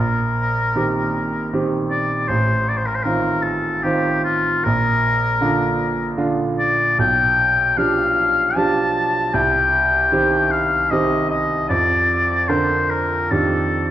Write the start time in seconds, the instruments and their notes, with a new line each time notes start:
Already playing: grand piano A#1, oboe A#4
0.76 grand piano D#3 C4 G4
1.53 grand piano D#3 C4 G4
1.90 oboe D5
2.28 grand piano A1, oboe C5
2.70 oboe D5
2.78 oboe C5
2.86 oboe A#4
2.95 oboe C5
3.03 grand piano D#3 C4 F4, oboe A#4
3.43 oboe A4
3.83 grand piano D#3 C4 F4, oboe G4
4.24 oboe F4
4.64 grand piano A#1, oboe A#4
5.41 grand piano D3 D4 F4
6.18 grand piano D3 D4 F4
6.59 oboe D5
6.98 grand piano B1, oboe G5
7.77 grand piano F3 D4 G4, oboe F5
8.56 grand piano F3 D4 G4, oboe A5
9.33 grand piano C2, oboe G5
10.12 grand piano D#3 C4 G4
10.52 oboe F5
10.91 grand piano D#3 C4 G4, oboe D#5
11.30 oboe D#5
11.69 grand piano F2, oboe D5
12.49 grand piano D3 D4 A#4, oboe C5
12.90 oboe A#4
13.31 grand piano F2 D#3 D4 G4, oboe A4